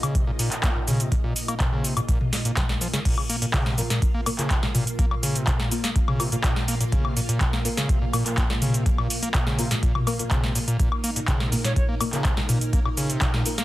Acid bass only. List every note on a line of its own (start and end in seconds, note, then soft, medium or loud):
0.03 0.16 C#3 loud
0.15 0.25 C3 medium
0.27 0.31 A#2 loud
0.39 0.49 A#2 loud
0.63 0.70 A#3 medium
0.76 0.80 A#2 medium
0.88 1.01 C#3 loud
1.00 1.10 C3 medium
1.12 1.16 A#2 loud
1.24 1.34 A#2 loud
1.48 1.55 A#3 medium
1.60 1.64 A#2 medium
1.72 1.86 C#3 loud
1.84 1.95 C3 medium
1.97 2.01 A#2 loud
2.08 2.19 A#2 loud
2.33 2.37 A#2 medium
2.45 2.52 A#2 medium
2.57 2.64 F3 loud
2.69 2.76 A#1 medium
2.81 2.88 F3 medium
2.93 3.00 C#3 loud
3.05 3.15 A#2 loud
3.29 3.36 A#3 medium
3.42 3.46 A#2 medium
3.54 3.68 C#3 loud
3.66 3.76 C3 medium
3.78 3.82 A#2 loud
3.90 4.00 A#2 loud
4.14 4.21 A#3 medium
4.26 4.30 A#2 medium
4.39 4.52 C#3 loud
4.50 4.61 C3 medium
4.63 4.67 A#2 loud
4.75 4.85 A#2 loud
4.99 5.06 A#3 medium
5.11 5.15 A#2 medium
5.23 5.37 C#3 loud
5.35 5.45 C3 medium
5.47 5.51 A#2 loud
5.60 5.69 A#2 loud
5.84 5.90 A#3 medium
5.96 6.00 A#2 medium
6.08 6.21 C#3 loud
6.20 6.30 C3 medium
6.32 6.36 A#2 loud
6.44 6.54 A#2 loud
6.68 6.75 A#3 medium
6.81 6.84 A#2 medium
6.92 7.06 C#3 loud
7.05 7.15 C3 medium
7.16 7.21 A#2 loud
7.29 7.39 A#2 loud
7.53 7.60 A#3 medium
7.65 7.69 A#2 medium
7.77 7.91 C#3 loud
7.89 7.99 C3 medium
8.02 8.05 A#2 loud
8.13 8.24 A#2 loud
8.38 8.44 A#3 medium
8.50 8.54 A#2 medium
8.62 8.76 C#3 loud
8.74 8.84 C3 medium
8.86 8.90 A#2 loud
8.98 9.08 A#2 loud
9.23 9.29 A#3 medium
9.34 9.38 A#2 medium
9.47 9.60 C#3 loud
9.59 9.69 C3 medium
9.71 9.75 A#2 loud
9.83 9.93 A#2 loud
10.07 10.14 A#3 medium
10.19 10.23 A#2 medium
10.31 10.45 C#3 loud
10.43 10.53 C3 medium
10.55 10.59 A#2 loud
10.68 10.77 A#2 loud
10.79 10.90 A#2 loud
11.04 11.11 A#3 medium
11.16 11.20 A#2 medium
11.28 11.42 C#3 loud
11.40 11.50 C3 medium
11.52 11.56 A#2 loud
11.64 11.74 A#2 loud
11.89 11.95 A#3 medium
12.00 12.05 A#2 medium
12.13 12.26 C#3 loud
12.25 12.35 C3 medium
12.37 12.41 A#2 loud
12.49 12.59 A#2 loud
12.73 12.80 A#3 medium
12.85 12.89 A#2 medium
12.97 13.11 C#3 loud
13.10 13.19 C3 medium
13.21 13.26 A#2 loud
13.34 13.44 A#2 loud
13.58 13.64 A#3 medium